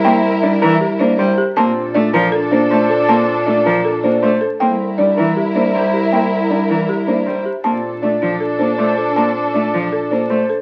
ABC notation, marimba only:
X:1
M:4/4
L:1/8
Q:1/4=158
K:Bblyd
V:1 name="Marimba"
g z d z G c z G | a z d z A c z A | a z d z A c z A | g z d z G c z G |
g z d z G c z G | a z d z A c z A | a z d z A c z A |]